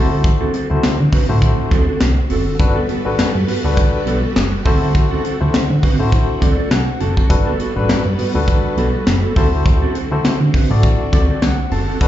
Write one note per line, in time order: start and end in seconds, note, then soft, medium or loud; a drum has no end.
0.00 0.46 D2 loud
0.00 2.57 D3 medium
0.00 0.10 C4 medium
0.00 2.57 C4 medium
0.00 0.54 E4 medium
0.00 0.11 F#4 medium
0.00 0.54 F#4 medium
0.00 11.97 F#4 medium
0.00 0.54 A4 medium
0.00 0.54 C5 loud
0.11 0.22 C4 medium
0.11 0.21 F#4 medium
0.11 0.21 A4 medium
0.24 kick loud
0.24 closed hi-hat medium
0.41 0.52 C4 medium
0.41 0.53 F#4 medium
0.41 0.53 A4 medium
0.53 0.66 C4 medium
0.53 0.66 F#4 medium
0.53 0.67 A4 medium
0.53 closed hi-hat medium
0.70 0.79 D2 medium
0.70 0.96 E4 medium
0.70 0.96 F#4 medium
0.70 0.96 A4 medium
0.70 0.96 C5 medium
0.83 0.90 D3 soft
0.83 muted clean electric guitar stroke soft
0.83 snare loud
0.83 clap medium
0.83 closed hi-hat medium
0.99 1.09 D3 medium
0.99 muted clean electric guitar stroke soft
1.12 1.28 C4 medium
1.12 1.28 F#4 medium
1.12 1.28 B4 medium
1.12 kick medium
1.12 open hi-hat medium
1.29 1.49 A2 medium
1.29 1.81 E4 medium
1.29 1.81 F#4 medium
1.29 1.81 A4 medium
1.29 1.81 C5 medium
1.29 muted clean electric guitar stroke soft
1.42 muted clean electric guitar stroke soft
1.42 kick medium
1.42 closed hi-hat medium
1.58 muted clean electric guitar stroke soft
1.71 1.92 D2 loud
1.71 1.87 C4 medium
1.71 1.87 F#4 loud
1.71 1.86 A4 loud
1.71 kick medium
1.71 closed hi-hat medium
1.88 1.98 C4 medium
1.88 1.98 F#4 medium
1.88 1.97 A4 medium
2.00 2.21 C2 loud
2.00 snare loud
2.00 clap loud
2.00 closed hi-hat medium
2.17 muted clean electric guitar stroke soft
2.30 2.50 F#1 loud
2.30 2.46 C4 medium
2.30 2.46 F#4 medium
2.30 2.45 A4 medium
2.30 open hi-hat medium
2.46 2.57 C4 medium
2.46 2.57 F#4 medium
2.46 2.56 A4 medium
2.59 2.91 G1 loud
2.59 4.64 G3 medium
2.59 2.80 D4 medium
2.59 2.81 F#4 medium
2.59 4.63 A4 medium
2.59 2.81 A4 medium
2.59 4.64 B4 medium
2.59 2.81 B4 medium
2.59 muted clean electric guitar stroke soft
2.59 kick loud
2.59 closed hi-hat medium
2.75 2.87 B3 medium
2.75 2.88 F#4 medium
2.75 2.88 A4 medium
2.89 3.01 B3 medium
2.89 3.01 F#4 medium
2.89 3.02 A4 medium
2.89 closed hi-hat medium
3.05 3.15 A1 medium
3.05 3.31 D4 medium
3.05 3.31 F#4 medium
3.05 3.31 A4 medium
3.05 3.32 B4 medium
3.05 muted clean electric guitar stroke soft
3.18 3.25 G2 medium
3.18 muted clean electric guitar stroke soft
3.18 snare loud
3.18 clap medium
3.18 closed hi-hat loud
3.35 3.44 G2 loud
3.35 muted clean electric guitar stroke soft
3.47 3.63 B3 medium
3.47 3.64 F#4 medium
3.47 3.64 B4 loud
3.47 open hi-hat loud
3.64 3.84 D2 medium
3.64 4.16 D4 medium
3.64 4.16 F#4 medium
3.64 4.16 A4 medium
3.64 4.17 B4 medium
3.64 muted clean electric guitar stroke soft
3.77 muted clean electric guitar stroke soft
3.77 kick loud
3.77 closed hi-hat loud
3.93 muted clean electric guitar stroke soft
4.06 4.27 B1 medium
4.06 4.22 B3 medium
4.06 4.22 F#4 loud
4.06 4.21 A4 loud
4.06 closed hi-hat medium
4.23 4.33 B3 medium
4.23 4.33 F#4 medium
4.23 4.33 A4 medium
4.36 4.56 F#1 loud
4.36 muted clean electric guitar stroke soft
4.36 snare loud
4.36 clap medium
4.36 closed hi-hat medium
4.52 muted clean electric guitar stroke soft
4.65 5.17 D2 loud
4.65 7.27 D3 medium
4.65 4.81 C4 medium
4.65 7.28 C4 medium
4.65 5.24 E4 medium
4.65 4.81 F#4 medium
4.65 5.24 F#4 medium
4.65 5.25 A4 medium
4.65 4.80 A4 loud
4.65 5.25 C5 loud
4.65 kick medium
4.65 open hi-hat medium
4.81 4.92 C4 medium
4.81 4.92 F#4 medium
4.81 4.91 A4 medium
4.94 muted clean electric guitar stroke soft
4.94 kick loud
4.94 closed hi-hat loud
5.11 5.23 C4 medium
5.11 5.23 F#4 medium
5.11 5.24 A4 medium
5.24 5.36 C4 medium
5.24 5.37 F#4 medium
5.24 5.37 A4 medium
5.24 closed hi-hat medium
5.40 5.50 D2 loud
5.40 5.66 E4 medium
5.40 5.67 F#4 medium
5.40 5.67 A4 medium
5.40 5.67 C5 medium
5.40 muted clean electric guitar stroke soft
5.54 5.60 D3 medium
5.54 snare loud
5.54 clap medium
5.54 closed hi-hat medium
5.70 5.79 D3 medium
5.70 muted clean electric guitar stroke soft
5.82 5.98 C4 medium
5.82 5.99 F#4 medium
5.82 5.99 B4 medium
5.82 kick medium
5.82 open hi-hat medium
5.99 6.20 A2 medium
5.99 6.51 E4 medium
5.99 6.51 F#4 medium
5.99 6.51 A4 medium
5.99 6.52 C5 loud
5.99 muted clean electric guitar stroke soft
6.12 muted clean electric guitar stroke soft
6.12 kick medium
6.12 closed hi-hat medium
6.29 muted clean electric guitar stroke soft
6.41 6.62 D2 medium
6.41 6.57 C4 medium
6.41 6.58 F#4 loud
6.41 6.57 A4 loud
6.41 6.69 D5 medium
6.41 kick loud
6.41 closed hi-hat medium
6.58 6.69 C4 medium
6.58 6.68 F#4 medium
6.58 6.68 A4 medium
6.71 6.91 C2 medium
6.71 6.99 F#5 medium
6.71 snare loud
6.71 clap loud
6.71 closed hi-hat medium
6.88 muted clean electric guitar stroke medium
7.00 7.21 F#1 loud
7.00 7.16 C4 medium
7.00 7.17 F#4 medium
7.00 7.16 A4 medium
7.00 7.28 A5 medium
7.00 closed hi-hat medium
7.17 7.27 C4 medium
7.17 7.27 F#4 medium
7.17 7.27 A4 medium
7.17 kick medium
7.29 7.61 G1 loud
7.29 9.34 G3 medium
7.29 7.51 D4 medium
7.29 7.51 F#4 medium
7.29 7.51 A4 medium
7.29 9.34 A4 medium
7.29 7.51 B4 medium
7.29 9.34 B4 medium
7.29 muted clean electric guitar stroke soft
7.29 kick loud
7.29 closed hi-hat medium
7.46 7.58 B3 medium
7.46 7.59 F#4 medium
7.46 7.59 A4 loud
7.59 7.72 B3 medium
7.59 7.72 F#4 medium
7.59 7.72 A4 medium
7.59 closed hi-hat medium
7.76 7.85 A1 medium
7.76 8.02 D4 medium
7.76 8.02 F#4 medium
7.76 8.02 A4 medium
7.76 8.02 B4 medium
7.89 7.96 G2 soft
7.89 muted clean electric guitar stroke soft
7.89 snare loud
7.89 clap medium
7.89 closed hi-hat medium
8.05 8.14 G2 medium
8.05 muted clean electric guitar stroke soft
8.18 8.34 B3 medium
8.18 8.34 F#4 medium
8.18 8.34 B4 medium
8.18 open hi-hat medium
8.35 8.55 D2 loud
8.35 8.87 D4 medium
8.35 8.87 F#4 medium
8.35 8.87 A4 medium
8.35 8.87 B4 medium
8.35 muted clean electric guitar stroke soft
8.48 muted clean electric guitar stroke soft
8.48 kick medium
8.48 closed hi-hat medium
8.64 muted clean electric guitar stroke soft
8.77 8.97 B1 medium
8.77 8.93 B3 loud
8.77 8.93 F#4 medium
8.77 8.92 A4 medium
8.77 closed hi-hat medium
8.94 9.04 B3 soft
8.94 9.04 F#4 medium
8.94 9.03 A4 medium
9.07 9.27 F#1 loud
9.07 muted clean electric guitar stroke soft
9.07 snare loud
9.07 clap medium
9.07 closed hi-hat medium
9.23 9.36 B3 medium
9.23 9.36 F#4 medium
9.23 9.35 A4 medium
9.36 9.88 D2 medium
9.36 11.99 D3 medium
9.36 9.48 C4 medium
9.36 11.98 C4 medium
9.36 9.95 E4 medium
9.36 9.95 F#4 medium
9.36 9.49 F#4 medium
9.36 9.95 A4 medium
9.36 9.49 A4 medium
9.36 9.95 C5 loud
9.36 kick medium
9.36 open hi-hat medium
9.66 muted clean electric guitar stroke soft
9.66 kick loud
9.66 closed hi-hat loud
9.82 9.94 C4 medium
9.82 9.95 F#4 medium
9.82 9.94 A4 medium
9.95 10.07 C4 medium
9.95 10.08 F#4 medium
9.95 10.08 A4 medium
9.95 closed hi-hat medium
10.11 10.20 D2 medium
10.11 10.37 E4 medium
10.11 10.37 F#4 medium
10.11 10.38 A4 medium
10.11 10.38 C5 medium
10.24 10.31 D3 soft
10.24 snare loud
10.24 clap medium
10.24 closed hi-hat loud
10.41 10.50 D3 medium
10.41 muted clean electric guitar stroke soft
10.54 10.69 C4 medium
10.54 10.70 F#4 medium
10.54 10.70 B4 medium
10.54 kick loud
10.54 open hi-hat loud
10.70 10.90 A2 medium
10.70 11.22 E4 medium
10.70 11.22 F#4 medium
10.70 11.22 A4 medium
10.70 11.12 D5 medium
10.70 muted clean electric guitar stroke soft
10.83 muted clean electric guitar stroke soft
10.83 kick loud
10.83 closed hi-hat medium
11.00 muted clean electric guitar stroke medium
11.12 11.33 D2 medium
11.12 11.28 C4 loud
11.12 11.29 F#4 medium
11.12 11.28 A4 loud
11.12 11.40 D5 medium
11.12 kick loud
11.12 closed hi-hat medium
11.29 11.39 C4 medium
11.29 11.39 F#4 medium
11.29 11.39 A4 medium
11.42 11.62 C2 medium
11.42 11.70 F#5 medium
11.42 snare loud
11.42 clap medium
11.42 closed hi-hat medium
11.59 muted clean electric guitar stroke medium
11.71 11.91 F#1 medium
11.71 11.87 C4 medium
11.71 11.87 F#4 medium
11.71 11.87 A4 medium
11.71 11.99 A5 medium
11.71 open hi-hat medium
11.88 11.98 C4 medium
11.88 11.98 F#4 medium
11.88 11.97 A4 medium
12.01 12.08 G1 loud
12.01 12.08 G3 medium
12.01 12.08 D4 medium
12.01 12.08 F#4 medium
12.01 12.08 A4 medium
12.01 12.08 B4 medium
12.01 12.08 F#5 medium
12.01 kick loud
12.01 closed hi-hat medium